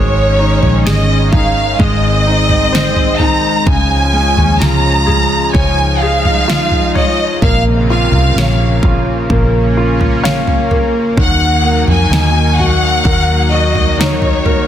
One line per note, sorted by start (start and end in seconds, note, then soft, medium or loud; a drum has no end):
0.00 0.59 G#1 loud
0.00 3.63 D#3 medium
0.00 1.76 G#3 medium
0.00 7.38 G#3 medium
0.00 1.78 C#4 medium
0.00 0.81 C#5 medium
0.39 1.32 D#4 medium
0.63 0.84 A#1 medium
0.63 floor tom medium
0.86 1.76 G#1 medium
0.86 1.77 G#4 medium
0.86 1.30 D#5 medium
0.86 snare loud
1.33 1.79 D#4 soft
1.33 1.80 F5 medium
1.33 kick medium
1.33 floor tom medium
1.79 3.63 G#1 medium
1.79 3.63 G#3 medium
1.79 3.66 C4 medium
1.79 3.21 D#5 medium
1.79 kick medium
1.79 floor tom medium
2.26 3.18 D#4 medium
2.49 floor tom medium
2.73 3.64 C5 medium
2.73 snare loud
2.96 floor tom medium
3.19 3.65 D#4 medium
3.19 3.67 A#5 medium
3.19 floor tom medium
3.67 4.34 C#2 loud
3.67 7.38 C#3 medium
3.67 7.39 F3 medium
3.67 5.53 C#4 medium
3.67 4.58 G#5 loud
3.67 kick loud
3.67 floor tom loud
4.13 5.97 G#3 medium
4.37 4.60 D#2 medium
4.37 floor tom medium
4.60 5.51 C#2 medium
4.60 6.44 F4 soft
4.60 5.55 A#5 loud
4.60 snare loud
5.06 6.01 G#4 medium
5.06 floor tom medium
5.53 7.38 C#2 medium
5.53 7.40 D#4 medium
5.53 6.94 C#5 medium
5.53 5.98 G#5 loud
5.53 kick medium
5.53 floor tom medium
6.01 7.39 G#4 medium
6.01 6.95 F5 medium
6.25 floor tom medium
6.48 7.39 F4 medium
6.48 snare loud
6.71 floor tom medium
6.95 7.41 C#5 medium
6.95 7.39 D#5 medium
6.95 floor tom medium
7.42 8.09 A#1 loud
7.42 9.28 C3 medium
7.42 11.14 C#3 medium
7.42 14.67 A#3 medium
7.42 9.30 A#3 medium
7.42 7.63 F5 medium
7.42 kick loud
7.42 floor tom loud
7.90 8.83 F4 medium
7.90 8.80 F5 medium
8.12 8.34 C2 medium
8.12 floor tom medium
8.36 9.26 A#1 medium
8.36 10.21 C#5 medium
8.36 snare loud
8.83 9.76 F4 medium
8.83 kick medium
8.83 floor tom medium
9.30 11.14 A#1 medium
9.30 10.69 A#3 medium
9.30 11.16 C#4 medium
9.30 kick medium
9.30 floor tom medium
9.77 11.14 F4 medium
10.01 floor tom medium
10.23 11.15 C#5 medium
10.23 11.13 F5 medium
10.23 snare loud
10.47 floor tom medium
10.71 11.16 A#3 medium
10.71 floor tom medium
11.17 11.84 D#2 loud
11.17 14.67 D#3 medium
11.17 14.67 F#3 medium
11.17 11.85 F#5 loud
11.17 kick loud
11.17 floor tom loud
11.64 13.48 A#3 medium
11.88 12.09 F2 medium
11.88 12.56 G#5 loud
11.88 floor tom medium
12.10 13.00 D#2 medium
12.10 13.95 D#4 medium
12.10 snare loud
12.59 13.50 F#4 medium
12.59 13.52 F#5 loud
12.59 floor tom medium
13.05 14.67 D#2 loud
13.05 14.44 A#4 medium
13.05 kick medium
13.05 floor tom medium
13.52 14.67 F#4 soft
13.52 13.99 D#5 medium
13.75 floor tom medium
13.99 14.67 D#4 medium
13.99 14.67 C#5 medium
13.99 snare loud
14.22 floor tom medium
14.46 14.67 A#4 medium
14.46 floor tom medium